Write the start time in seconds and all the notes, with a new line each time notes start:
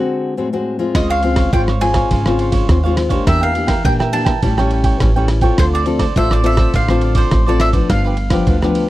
Already playing: D3 G#3 C4 F#4 F#5
0.37 A2 G#3 C4 F#4
0.53 G#3 C4 F#4
0.79 G#3 C4 F4
0.95 C#2 C#3 F4 C5 C#5 D#5 F5, kick, cross-stick, ride
1.10 C5 C#5 F5
1.23 G#3 C4 F4, muted cavaquinho stroke, ride
1.36 C5 C#5 F5, kick, cross-stick, ride
1.53 G#1 G#2 G#3 C4 F4 C5 C#5 F5 G5, kick, ride
1.67 C5 C#5 F5, cross-stick
1.81 G#3 C4 F4 G#5, ride
1.94 C5 C#5 F5, kick, cross-stick, ride
2.10 G#1 C#3 F4 C5 C#5 F5, kick, ride
2.26 G#3 C4 F4 C5 C#5 F5, cross-stick
2.39 F4 C5 C#5 F5, ride
2.52 C5 C#5 F5, kick, ride
2.69 D#2 G#2 G#3 C4 F4, kick, cross-stick, ride
2.84 G#3 C4 F4 C5 C#5 F5
2.96 muted cavaquinho stroke, cross-stick, ride
3.09 A#3 D4 G4 C5 C#5 F5, kick, ride
3.26 E2 E3 D4 A#4 E5 G5, kick, cross-stick, ride
3.41 A#4 E5 F5 G5
3.54 A#3 D4 G4, muted cavaquinho stroke, ride
3.67 A#4 E5 G5, kick, cross-stick, ride
3.84 A#2 E3 A#3 D4 G4 A#4 E5 G5, kick, ride
3.99 A#4 E5 G5, cross-stick
4.13 A#3 D4 G4 A5, ride
4.25 A#4 E5 G5, kick, cross-stick, ride
4.42 A1 A2 G3 C#4 E4 G4 A4 C#5 G5, kick, ride
4.57 G3 C#4 E4 A4 C#5 G5, cross-stick
4.71 G4 A4 C#5 G5, ride
4.84 A4 C#5 G5, kick, ride
5.00 A1 E3 G3 C#4 E4, kick, cross-stick, ride
5.16 G3 C#4 E4 A4 C#5 G5
5.28 muted cavaquinho stroke, cross-stick, ride
5.41 C4 F4 A4 C#5 G5, kick, ride
5.58 D2 D3 F4 A4 C5 D5, kick, cross-stick, ride
5.73 A4 C5 D5
5.86 C4 F4 A4, muted cavaquinho stroke, ride
5.99 A4 C5 D5, kick, cross-stick, ride
6.16 A1 A2 C4 F4 A4 C5 D5 E5, kick, ride
6.31 A4 C5 D5, cross-stick
6.44 C4 F4 A4 E5, ride
6.57 A4 C5 D5, kick, cross-stick, ride
6.73 A1 D3 F4 A4 C5 D5 F5, kick, ride
6.88 C4 F4 A4 C5 D5, cross-stick
7.01 F4 A4 C5 D5, ride
7.15 A4 C5 D5, kick, ride
7.31 A1 A2, kick, cross-stick, ride
7.46 C4 F4 A4 C5 D5
7.60 E5, cross-stick, ride
7.73 F3 B3 D4 A4 C5 D5, kick, ride
7.89 G1 G2 D4 G4 B4 F5, kick, cross-stick, ride
8.05 G4 B4 F5
8.17 muted cavaquinho stroke, ride
8.30 F3 B3 D4 G4 B4 F5, kick, cross-stick, ride
8.47 D2 D3 D4 G4 B4 F5, kick, ride
8.62 F3 B3 D4 G4 B4 F5, cross-stick
8.75 ride